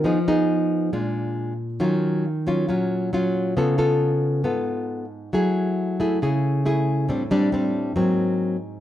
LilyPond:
\new Staff \with { instrumentName = "Nylon-string guitar" } { \time 4/4 \key des \mixolydian \tempo 4 = 136 << { <ces' ees' aes'>8 <ces' ees' aes'>4. <aes d' f'>4. r8 | <ges des' f'>4 r8 <ges des' f'>8 <ges des' f'>4 <ges des' f'>4 | <ces' f' a'>8 <ces' f' a'>4. <ces' f' a'>4. r8 | \key fis \minor <a e' gis'>4. <a e' gis'>8 <a e' gis'>4 <a e' gis'>4 |
<g c' d'>8 <g c' d'>8 <g c' d'>4 <fis ais bis>4. r8 | } \\ { f2 bes,2 | ees2 bes,2 | des2 aes,2 | fis2 cis2 |
a,2 gis,2 | } >> }